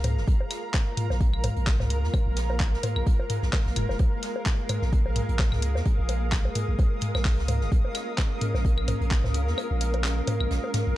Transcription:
Already playing: sub bass C#2, synth texture G#3 G#4, ambient pad A#4 F5 A#5
0.04 closed hi-hat, mid tom, low bongo
0.17 sub bass F1, snare
0.28 sub bass A#1, synth texture F4, kick, closed hi-hat
0.41 low bongo
0.50 snare, closed hi-hat, claves
0.74 kick, snare, clap, closed hi-hat, low bongo
0.97 closed hi-hat, mid tom
1.10 sub bass A#1, snare, low bongo
1.21 kick, closed hi-hat
1.34 claves
1.44 closed hi-hat, mid tom, low bongo
1.56 sub bass A#1, closed hi-hat
1.67 kick, snare, clap, closed hi-hat
1.80 sub bass C#2, snare, mid tom, low bongo
1.90 closed hi-hat
2.03 sub bass F2, snare
2.14 kick, closed hi-hat, low bongo, claves
2.27 sub bass A#1
2.36 snare, closed hi-hat
2.50 low bongo
2.60 kick, clap, closed hi-hat
2.74 snare
2.83 closed hi-hat, mid tom, low bongo
2.96 sub bass A#1, claves
3.07 sub bass A#1, kick, closed hi-hat
3.20 low bongo
3.30 closed hi-hat, mid tom
3.42 sub bass A#1, snare
3.53 kick, snare, clap, open hi-hat, low bongo
3.66 sub bass A#1, snare
3.76 sub bass F1, closed hi-hat, mid tom, claves
3.89 sub bass F1, snare, low bongo
3.99 sub bass A#1, synth texture G#4, kick, closed hi-hat, low bongo
4.22 snare, closed hi-hat
4.36 low bongo
4.46 kick, snare, clap, closed hi-hat
4.50 ambient pad D#6
4.69 closed hi-hat, mid tom, low bongo, claves
4.82 sub bass A#1, snare
4.93 kick, closed hi-hat
5.06 low bongo
5.16 closed hi-hat, mid tom
5.29 sub bass A#1, closed hi-hat
5.39 kick, snare, clap, closed hi-hat, low bongo
5.52 sub bass C#2, snare, mid tom, claves
5.62 closed hi-hat
5.75 sub bass F2, snare, low bongo
5.85 kick, closed hi-hat
5.99 sub bass A#1
6.08 closed hi-hat, low bongo
6.31 kick, snare, clap, closed hi-hat, claves
6.45 low bongo
6.55 closed hi-hat, mid tom
6.68 sub bass A#1
6.79 sub bass A#1, kick, closed hi-hat, low bongo
7.01 closed hi-hat, mid tom
7.15 sub bass A#1, snare, low bongo, claves
7.25 kick, snare, clap, open hi-hat
7.38 sub bass C#2, snare
7.48 closed hi-hat, mid tom, low bongo
7.61 sub bass F1, snare
7.72 sub bass A#1, synth texture C#4, kick, closed hi-hat
7.85 low bongo
7.95 snare, closed hi-hat, claves
8.17 kick, snare, clap, closed hi-hat, low bongo
8.41 closed hi-hat, mid tom
8.54 sub bass A#1, snare, low bongo
8.65 kick, closed hi-hat
8.78 claves
8.88 closed hi-hat, mid tom, low bongo
9.01 sub bass A#1, closed hi-hat
9.11 kick, snare, clap, closed hi-hat
9.24 sub bass C#2, snare, mid tom, low bongo
9.34 closed hi-hat
9.47 sub bass F2, snare
9.58 closed hi-hat, low bongo, claves
9.71 sub bass A#1
9.81 closed hi-hat
9.94 closed hi-hat, low bongo
10.04 snare, clap, closed hi-hat
10.27 closed hi-hat, mid tom, low bongo
10.40 sub bass A#1, claves
10.51 sub bass A#1, snare, closed hi-hat
10.64 low bongo
10.74 snare, closed hi-hat, mid tom
10.87 sub bass A#1

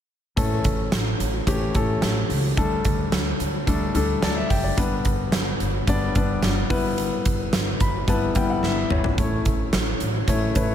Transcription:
0.36 upright bass A1, grand piano E3 A3 C#4 A4, kick, closed hi-hat
0.64 upright bass A1, kick, closed hi-hat
0.92 upright bass A1, snare, closed hi-hat
1.20 upright bass A1, closed hi-hat
1.47 upright bass A1, grand piano E3 A3 C#4 G4, kick, closed hi-hat
1.74 upright bass A1, grand piano E3 A3 C#4 A4, kick, closed hi-hat
2.02 upright bass A1, snare, closed hi-hat
2.29 upright bass C#2, open hi-hat
2.57 upright bass D2, grand piano G3 A3 D4 A4, kick, closed hi-hat
2.85 upright bass D2, kick, closed hi-hat
3.12 upright bass D2, snare, closed hi-hat
3.40 upright bass D2, closed hi-hat
3.67 upright bass D2, grand piano G3 A3 D4 A4, kick, closed hi-hat
3.94 upright bass D2, grand piano G3 A3 D4 A4, closed hi-hat
4.22 upright bass D2, grand piano D5 A5, snare, closed hi-hat
4.37 grand piano E5
4.50 upright bass F#1, grand piano G5, kick, open hi-hat
4.64 grand piano D5
4.77 upright bass G1, grand piano G3 B3 D4 B4, kick, closed hi-hat
5.05 upright bass G1, kick, closed hi-hat
5.32 upright bass G1, snare, closed hi-hat
5.60 upright bass G1, closed hi-hat
5.87 upright bass G1, grand piano G3 B3 D4 D5, kick, closed hi-hat
6.15 upright bass G1, grand piano G3 B3 D4 B4, kick, closed hi-hat
6.42 upright bass G1, snare, closed hi-hat
6.70 upright bass G1, grand piano G3 B3 E4 B4, kick, open hi-hat
6.98 closed hi-hat
7.25 upright bass G1, kick, closed hi-hat
7.53 upright bass G1, snare, closed hi-hat
7.80 upright bass G1, grand piano B5, kick, closed hi-hat
8.08 upright bass G1, grand piano G3 B3 E4 B4 A5, kick, closed hi-hat
8.35 upright bass G1, grand piano G3 B3 E4 B4 G5, kick, closed hi-hat
8.50 grand piano F#5
8.63 upright bass G1, grand piano E5, snare
8.90 upright bass G1, grand piano C#5, mid tom
9.04 floor tom
9.18 upright bass A1, grand piano A3 C#4 E4 C#5, kick, closed hi-hat
9.45 upright bass A1, kick, closed hi-hat
9.73 upright bass A1, snare, closed hi-hat
10.00 upright bass A1, closed hi-hat
10.28 upright bass A1, grand piano A3 C#4 E4 C#5, kick, closed hi-hat
10.55 upright bass A1, grand piano A3 C#4 E4 B4, kick, closed hi-hat
10.63 grand piano C#5

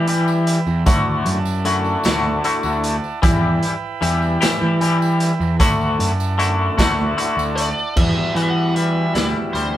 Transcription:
Already playing: picked electric bass E3, transistor combo organ E4 B4 G5 B5
0.07 clean electric guitar E3 G3 E4 G4, closed hi-hat
0.28 tambourine
0.47 closed hi-hat
0.67 picked electric bass E2, tambourine
0.86 picked electric bass D2, clean electric guitar D3 A3 E4 F#4, transistor combo organ D5 F#5 A5, kick, closed hi-hat, tambourine
1.26 picked electric bass F#2, closed hi-hat
1.45 tambourine
1.65 clean electric guitar D3 A3 E4 F#4, closed hi-hat
1.84 tambourine
2.03 picked electric bass D2, clean electric guitar D3 A3 E4 F#4, snare, closed hi-hat, tambourine
2.44 clean electric guitar D3 A3 E4 F#4, closed hi-hat
2.63 picked electric bass D2, tambourine
2.84 closed hi-hat
3.04 tambourine
3.22 picked electric bass E2, clean electric guitar E3 G3 E4 G4, transistor combo organ B4 G5 B5, kick, closed hi-hat, tambourine
3.63 closed hi-hat
4.01 picked electric bass E2, clean electric guitar E3 G3 E4 G4, closed hi-hat
4.22 tambourine
4.41 clean electric guitar E3 G3 E4 G4, snare, closed hi-hat, tambourine
4.62 picked electric bass E3
4.81 clean electric guitar E3 G3 E4 G4, closed hi-hat
5.02 tambourine
5.20 closed hi-hat
5.40 picked electric bass E2, tambourine
5.60 picked electric bass D2, clean electric guitar D3 A3 E4 F#4, transistor combo organ E4 D5 F#5 A5, kick, closed hi-hat, tambourine
5.81 tambourine
5.99 picked electric bass F#2, closed hi-hat
6.20 tambourine
6.38 clean electric guitar D3 A3 E4 F#4, closed hi-hat
6.78 picked electric bass D2, clean electric guitar D3 A3 E4 F#4, kick, snare, closed hi-hat, tambourine
7.17 clean electric guitar D3 A3 E4 F#4, closed hi-hat
7.37 picked electric bass D2, tambourine
7.56 lead electric guitar D5, closed hi-hat, tambourine
7.78 tambourine
7.96 clean electric guitar E2, picked electric bass E2, transistor combo organ G3 E4 F#4 B5, lead electric guitar E5, kick, crash
8.35 picked electric bass E3, clean electric guitar E3, lead electric guitar F#5, closed hi-hat
8.43 lead electric guitar E5
8.50 lead electric guitar F#5
8.76 clean electric guitar G3, lead electric guitar E5, closed hi-hat
9.14 picked electric bass D2, clean electric guitar E4, lead electric guitar D5, snare, closed hi-hat
9.53 picked electric bass D2, clean electric guitar G3, lead electric guitar C5, closed hi-hat

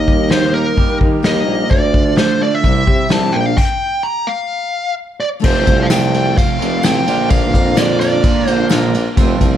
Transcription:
Already playing: tuba D#2, steel-string acoustic guitar D#3 A#3 D#4 G4 A#4, clean electric guitar D#3, accordion A#3 D#4 G4 A#4, lead electric guitar D#5
0.08 clean electric guitar G3, kick
0.16 steel-string acoustic guitar D#4 G4 A#4
0.28 steel-string acoustic guitar D#3 A#3 D#4 G4 A#4, clean electric guitar A#3, lead electric guitar C5, snare, open hi-hat
0.52 steel-string acoustic guitar A#3 D#4 G4 A#4, clean electric guitar D#4, lead electric guitar A#4
0.74 steel-string acoustic guitar A#3 D#4 G4, kick, open hi-hat
0.78 clean electric guitar G4, steel-string acoustic guitar A#4
0.89 steel-string acoustic guitar D#4 G4 A#4
1.01 tuba D#3, clean electric guitar D#4, kick
1.23 tuba D#2, steel-string acoustic guitar D#3 A#3 D#4 G4 A#4, clean electric guitar G3, lead electric guitar D#5, snare, open hi-hat
1.45 tuba A#1, steel-string acoustic guitar A#3 D#4 G4 A#4, clean electric guitar A#3
1.58 steel-string acoustic guitar D#4 G4 A#4
1.68 tuba D2, steel-string acoustic guitar D3 A3 D4 F4 A4, clean electric guitar D3, accordion A3 D4 F4 A4, lead electric guitar D5, kick, open hi-hat
1.94 clean electric guitar D3, kick
2.05 steel-string acoustic guitar D4 F4 A4
2.15 steel-string acoustic guitar D3 A3 D4 F4 A4, clean electric guitar A3, lead electric guitar C5, snare, open hi-hat
2.40 steel-string acoustic guitar A3 D4 F4 A4, clean electric guitar D4, lead electric guitar D5
2.55 lead electric guitar E5
2.62 tuba C2, clean electric guitar C3, steel-string acoustic guitar G3 C4 E4 C5, accordion G3 C4 E4 G4, kick, open hi-hat
2.74 steel-string acoustic guitar G3 C4 E4 C5
2.87 tuba C3, clean electric guitar C4, kick
3.09 tuba C2, steel-string acoustic guitar C3 E3 G3 C4 E4 C5, clean electric guitar E3, lead electric guitar A5, snare, open hi-hat
3.32 tuba A#1, clean electric guitar A#2, steel-string acoustic guitar G3 D4 G4 A#4, lead electric guitar G5
3.43 steel-string acoustic guitar G3 D4 G4 A#4, lead electric guitar F5
3.58 lead electric guitar G5, kick, crash
4.03 lead electric guitar A#5
4.27 lead electric guitar F5
5.20 lead electric guitar D5
5.40 clean electric guitar F2 C3, steel-string acoustic guitar F3 A3 C4 F4 A4, accordion A3 C4 F4 A4
5.44 tuba F1, clean electric guitar F3 A3 C4 F4, lead electric guitar C5, kick, crash
5.52 steel-string acoustic guitar C4 F4 A4
5.64 tuba C2, steel-string acoustic guitar A3 C4 F4 A4, kick, ride
5.76 steel-string acoustic guitar C4 F4 A4
5.82 lead electric guitar F5
5.90 steel-string acoustic guitar F3 A3 C4 F4 A4, lead electric guitar G5, snare, ride, tambourine
6.13 steel-string acoustic guitar A3 C4 F4 A4, ride
6.25 steel-string acoustic guitar C4 F4 A4
6.38 lead electric guitar F5, kick, ride
6.59 tuba F1, clean electric guitar F2 C3 F3 A3 C4 F4, steel-string acoustic guitar A3 C4 F4 A4, ride
6.70 steel-string acoustic guitar C4 F4 A4
6.82 tuba A1, clean electric guitar F2 C3 F3 A3 C4 F4, steel-string acoustic guitar F3 A3 C4 F4 A4, lead electric guitar G5, snare, ride, tambourine
7.06 tuba A#1, clean electric guitar A#2 D3 A#3 D4 F4, steel-string acoustic guitar A#3 D4 F4 A#4, accordion A#3 D4 F4 A#4, ride
7.28 steel-string acoustic guitar A#2 F3 A#3 D4 F4 A#4, lead electric guitar F5, kick, ride
7.41 steel-string acoustic guitar D4 F4 A#4
7.46 steel-string acoustic guitar A#3
7.53 tuba F2, steel-string acoustic guitar A#3 D4 F4 A#4, kick, ride
7.64 steel-string acoustic guitar A#3 D4 F4 A#4
7.74 steel-string acoustic guitar A#2 F3 A#3 D4 F4 A#4, lead electric guitar D5, snare, ride, tambourine
7.99 steel-string acoustic guitar A#3 D4 F4 A#4, lead electric guitar D5, ride
8.11 steel-string acoustic guitar A#3 D4 F4 A#4
8.23 clean electric guitar A#2 D3 A#3 D4 F4, kick, ride
8.45 tuba A#1, clean electric guitar A#2 D3 A#3 D4 F4, steel-string acoustic guitar A#3 D4 F4 A#4, lead electric guitar C5, ride
8.56 steel-string acoustic guitar A#3 D4 F4 A#4
8.69 tuba A#1, steel-string acoustic guitar A#2 F3 A#3 D4 F4 A#4, snare, ride, tambourine
8.94 steel-string acoustic guitar A#3 D4 F4 A#4, ride
9.16 tuba F1, clean electric guitar F2 C3 F3 A3 C4 F4, steel-string acoustic guitar F3 A3 C4, accordion C4 F4 A4 C5, kick, ride
9.20 steel-string acoustic guitar F4 C5
9.28 steel-string acoustic guitar C4 F4 C5
9.39 tuba C2, steel-string acoustic guitar A3 C4 F4, kick, ride
9.51 steel-string acoustic guitar C4 F4 C5

